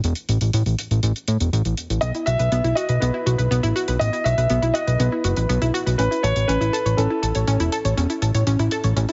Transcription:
0.04 0.13 E1 loud
0.04 closed hi-hat medium
0.15 closed hi-hat soft
0.29 0.38 A1 medium
0.29 closed hi-hat medium
0.41 0.51 A1 medium
0.41 closed hi-hat medium
0.53 0.63 A1 loud
0.53 closed hi-hat medium
0.66 0.75 A1 medium
0.66 closed hi-hat soft
0.79 closed hi-hat medium
0.91 1.00 A1 medium
0.91 closed hi-hat medium
1.03 1.13 A1 loud
1.03 closed hi-hat medium
1.16 closed hi-hat medium
1.28 1.37 A2 medium
1.28 closed hi-hat medium
1.40 1.50 E1 medium
1.40 closed hi-hat medium
1.53 1.62 A1 loud
1.53 closed hi-hat medium
1.65 1.75 A1 medium
1.65 closed hi-hat soft
1.77 closed hi-hat medium
1.90 1.99 A1 medium
1.90 closed hi-hat medium
2.01 2.12 B1 medium
2.01 2.10 B3 medium
2.01 2.07 D#5 loud
2.01 closed hi-hat medium
2.15 2.27 E4 medium
2.15 closed hi-hat soft
2.26 2.37 B1 medium
2.26 2.35 F#4 medium
2.26 2.73 E5 loud
2.26 closed hi-hat medium
2.39 2.49 B1 medium
2.39 2.48 B4 medium
2.39 closed hi-hat medium
2.52 2.61 B1 medium
2.52 2.64 B3 loud
2.52 closed hi-hat medium
2.64 2.74 B1 medium
2.64 2.69 E4 medium
2.64 closed hi-hat soft
2.75 2.82 F#4 loud
2.75 3.02 D#5 medium
2.75 closed hi-hat medium
2.89 2.99 B1 medium
2.89 3.01 B4 medium
2.89 closed hi-hat medium
3.00 3.11 B1 medium
3.00 3.10 B3 medium
3.00 3.71 B4 medium
3.00 closed hi-hat medium
3.14 3.26 E4 medium
3.26 3.36 B1 medium
3.26 3.34 F#4 medium
3.26 closed hi-hat medium
3.38 3.48 B1 medium
3.38 3.47 B4 medium
3.38 closed hi-hat medium
3.51 3.61 B1 loud
3.51 3.63 B3 medium
3.51 closed hi-hat medium
3.63 3.73 A1 medium
3.63 3.68 E4 medium
3.63 closed hi-hat medium
3.76 3.81 F#4 loud
3.76 closed hi-hat medium
3.88 3.98 B1 medium
3.88 4.00 B4 medium
3.88 closed hi-hat medium
3.99 4.10 A1 loud
3.99 4.09 B3 medium
3.99 4.26 D#5 loud
3.99 closed hi-hat medium
4.13 4.25 E4 medium
4.13 closed hi-hat soft
4.24 4.35 B1 medium
4.24 4.34 F#4 medium
4.24 4.71 E5 loud
4.24 closed hi-hat medium
4.38 4.47 B1 medium
4.38 4.46 B4 medium
4.38 closed hi-hat medium
4.50 4.60 B1 loud
4.50 4.62 B3 loud
4.50 closed hi-hat medium
4.62 4.72 B1 medium
4.62 4.67 E4 medium
4.62 closed hi-hat soft
4.74 4.80 F#4 loud
4.74 4.97 D#5 medium
4.74 closed hi-hat medium
4.87 4.97 B1 medium
4.87 4.99 B4 medium
4.87 closed hi-hat medium
4.98 5.09 B1 medium
4.98 5.08 B3 medium
4.98 5.70 B4 medium
4.98 closed hi-hat medium
5.12 5.24 E4 medium
5.24 5.34 F#1 medium
5.24 5.33 F#4 medium
5.24 closed hi-hat medium
5.36 5.47 A1 medium
5.36 5.45 B4 medium
5.36 closed hi-hat medium
5.49 5.59 B1 medium
5.49 5.61 B3 medium
5.49 closed hi-hat medium
5.62 5.71 B1 medium
5.62 5.67 E4 loud
5.62 closed hi-hat soft
5.74 5.79 F#4 loud
5.74 closed hi-hat medium
5.86 5.96 B1 medium
5.86 5.98 B4 medium
5.86 closed hi-hat medium
5.98 6.08 A1 loud
5.98 6.07 C#4 medium
5.98 6.22 B4 medium
5.98 closed hi-hat medium
6.11 6.23 E4 medium
6.11 closed hi-hat medium
6.23 6.33 A1 medium
6.23 6.32 A4 medium
6.23 6.49 C#5 loud
6.23 closed hi-hat medium
6.36 6.46 A1 medium
6.36 6.44 C#5 medium
6.36 closed hi-hat medium
6.48 6.58 A1 medium
6.48 6.60 C#4 medium
6.48 6.99 B4 medium
6.48 closed hi-hat medium
6.61 6.70 A1 medium
6.61 6.66 E4 medium
6.61 closed hi-hat soft
6.73 6.78 A4 loud
6.73 closed hi-hat medium
6.86 6.95 A1 medium
6.86 6.98 C#5 medium
6.86 closed hi-hat medium
6.97 7.08 A1 loud
6.97 7.06 C#4 medium
6.97 9.12 A4 medium
6.97 closed hi-hat medium
7.10 7.22 E4 medium
7.23 7.32 A1 medium
7.23 7.31 A4 medium
7.23 closed hi-hat medium
7.35 7.45 A1 medium
7.35 7.44 C#5 medium
7.35 closed hi-hat medium
7.47 7.57 A1 loud
7.47 7.60 C#4 medium
7.47 closed hi-hat medium
7.60 7.70 E1 medium
7.60 7.65 E4 medium
7.60 closed hi-hat medium
7.72 7.77 A4 loud
7.72 closed hi-hat medium
7.85 7.94 A1 medium
7.85 7.97 C#5 medium
7.85 closed hi-hat medium
7.97 8.07 E1 loud
7.97 8.06 C#4 medium
7.97 closed hi-hat medium
8.10 8.22 E4 medium
8.10 closed hi-hat soft
8.22 8.32 A1 medium
8.22 8.30 A4 medium
8.22 closed hi-hat medium
8.34 8.44 A1 medium
8.34 8.43 C#5 medium
8.34 closed hi-hat medium
8.47 8.56 A1 medium
8.47 8.59 C#4 loud
8.47 closed hi-hat medium
8.59 8.69 A1 medium
8.59 8.64 E4 medium
8.59 closed hi-hat soft
8.71 8.77 A4 loud
8.71 closed hi-hat medium
8.84 8.94 A1 medium
8.84 8.96 C#5 medium
8.84 closed hi-hat medium
8.96 9.06 A1 loud
8.96 9.05 C#4 medium
8.96 closed hi-hat medium
9.09 9.12 E4 medium
9.09 closed hi-hat soft

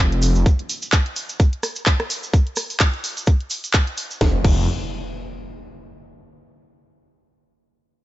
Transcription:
0.00 0.34 F1 loud
0.00 downlifter medium
0.12 closed hi-hat soft
0.22 open hi-hat loud
0.22 cabasa loud
0.35 0.44 F1 loud
0.35 cabasa medium
0.46 kick loud
0.46 closed hi-hat medium
0.46 cabasa soft
0.59 closed hi-hat soft
0.69 open hi-hat loud
0.69 cabasa loud
0.82 closed hi-hat soft
0.82 cabasa medium
0.92 kick loud
0.92 clap loud
0.92 closed hi-hat medium
0.92 cabasa soft
1.06 closed hi-hat soft
1.16 open hi-hat loud
1.16 cabasa medium
1.29 closed hi-hat medium
1.29 cabasa medium
1.40 kick loud
1.40 closed hi-hat medium
1.40 cabasa soft
1.53 closed hi-hat soft
1.63 cross-stick medium
1.63 open hi-hat loud
1.63 cabasa loud
1.76 closed hi-hat medium
1.76 cabasa medium
1.86 kick loud
1.86 clap loud
1.86 closed hi-hat medium
1.86 cabasa soft
2.00 cross-stick medium
2.00 closed hi-hat soft
2.10 open hi-hat loud
2.10 cabasa medium
2.23 cabasa medium
2.34 kick loud
2.34 closed hi-hat medium
2.34 cabasa soft
2.47 closed hi-hat soft
2.56 cross-stick medium
2.56 open hi-hat loud
2.56 cabasa loud
2.70 open hi-hat medium
2.70 cabasa medium
2.80 kick loud
2.80 clap loud
2.80 closed hi-hat medium
2.80 cabasa soft
2.94 closed hi-hat soft
3.04 open hi-hat loud
3.04 cabasa loud
3.17 closed hi-hat medium
3.17 cabasa medium
3.26 kick loud
3.26 closed hi-hat medium
3.26 cabasa soft
3.41 closed hi-hat soft
3.50 open hi-hat loud
3.50 cabasa medium
3.64 closed hi-hat soft
3.64 cabasa medium
3.74 kick loud
3.74 clap loud
3.74 closed hi-hat medium
3.74 cabasa soft
3.87 closed hi-hat soft
3.97 open hi-hat loud
3.97 cabasa loud
4.11 cabasa soft
4.21 4.35 F1 loud
4.21 kick loud
4.21 snare medium
4.21 impact medium
4.45 4.66 F1 loud
4.45 kick loud
4.45 crash medium

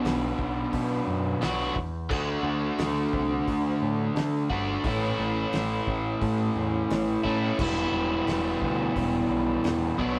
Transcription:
0.00 1.39 B2 medium
0.00 1.40 F#3 loud
0.00 1.40 B3 loud
0.00 1.41 D4 loud
0.00 1.41 F#4 loud
0.05 0.31 B1 medium
0.05 snare loud
0.05 open hi-hat medium
0.39 0.66 B1 medium
0.39 kick medium
0.73 1.00 B2 loud
0.73 kick medium
0.73 open hi-hat medium
1.07 1.34 F#2 medium
1.41 1.69 B1 medium
1.41 1.74 B2 medium
1.41 1.74 F#3 medium
1.41 1.74 B3 medium
1.41 1.75 D4 medium
1.41 1.75 F#4 loud
1.41 snare loud
1.41 open hi-hat medium
1.76 2.10 E2 medium
1.76 kick medium
2.10 2.37 D2 medium
2.10 4.48 D3 loud
2.10 4.48 A3 loud
2.10 4.49 D4 medium
2.10 4.48 F#4 loud
2.10 kick loud
2.10 crash loud
2.43 2.70 D2 loud
2.78 3.05 D2 loud
2.78 snare loud
2.78 open hi-hat medium
3.13 3.40 C2 medium
3.13 kick medium
3.47 3.74 D2 loud
3.47 kick medium
3.47 open hi-hat medium
3.82 4.09 A2 medium
4.15 4.42 D3 medium
4.15 snare loud
4.15 open hi-hat medium
4.50 4.77 G1 medium
4.50 4.84 D3 medium
4.50 4.83 A3 medium
4.50 4.83 D4 medium
4.50 4.82 F#4 medium
4.50 kick medium
4.84 5.11 A1 loud
4.84 7.22 A2 medium
4.84 7.22 E3 loud
4.84 7.23 A3 medium
4.84 7.23 C#4 loud
4.84 7.22 E4 loud
4.84 kick loud
4.84 open hi-hat medium
5.18 5.45 A1 loud
5.53 5.80 A1 medium
5.53 snare loud
5.53 open hi-hat medium
5.87 6.14 A1 medium
5.87 kick medium
6.21 6.49 A2 medium
6.21 kick medium
6.21 open hi-hat medium
6.56 6.82 E2 medium
6.90 7.17 A1 medium
6.90 snare loud
6.90 open hi-hat medium
7.24 7.51 A2 medium
7.24 7.58 A2 medium
7.24 7.57 E3 medium
7.24 7.57 A3 medium
7.24 7.57 C#4 medium
7.24 7.56 E4 medium
7.24 kick medium
7.59 7.85 E1 loud
7.59 9.96 E2 medium
7.59 9.97 B2 medium
7.59 9.97 E3 loud
7.59 9.97 G3 loud
7.59 9.97 B3 loud
7.59 9.98 E4 loud
7.59 kick loud
7.59 crash loud
7.92 8.19 E1 loud
8.26 8.53 E1 medium
8.26 snare loud
8.26 open hi-hat medium
8.62 8.88 D2 medium
8.62 kick medium
8.96 9.22 E1 medium
8.96 kick medium
8.96 open hi-hat medium
9.30 9.56 B1 medium
9.64 9.91 E2 medium
9.64 snare loud
9.64 open hi-hat medium
9.98 10.19 B1 medium
9.98 10.19 B2 medium
9.98 10.19 F#3 loud
9.98 10.19 B3 loud
9.98 10.19 D4 medium
9.98 10.19 F#4 loud
9.98 kick medium

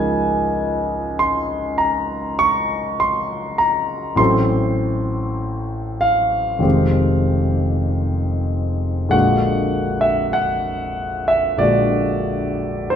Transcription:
0.00 4.13 C#2 soft
0.00 4.14 F3 soft
0.00 4.14 G#3 soft
0.00 4.14 D#4 soft
0.00 4.15 A#4 soft
0.00 1.21 G#5 medium
1.19 1.79 C6 medium
1.78 2.40 A#5 medium
2.39 3.00 C#6 medium
3.00 3.59 C6 medium
3.58 4.18 A#5 medium
4.16 6.58 A1 soft
4.16 6.59 E3 soft
4.16 6.59 F#3 soft
4.16 6.60 C4 soft
4.16 6.60 A4 soft
4.16 6.02 C6 medium
6.01 9.12 F5 medium
6.59 9.07 F1 soft
6.59 9.07 D#3 soft
6.59 9.08 G#3 soft
6.59 9.08 C4 soft
6.59 9.08 G4 soft
9.09 11.56 A#1 soft
9.09 11.56 D3 soft
9.09 11.58 G#3 soft
9.09 11.58 A#3 soft
9.09 11.59 F#4 soft
9.09 10.05 F#5 medium
10.01 10.34 E5 medium
10.33 11.29 F#5 medium
11.28 11.62 E5 medium
11.57 12.96 A#1 soft
11.57 12.96 D3 soft
11.57 12.96 G#3 soft
11.57 12.96 A#3 soft
11.57 12.96 F#4 soft
11.57 12.92 D5 medium
12.90 12.96 C5 medium

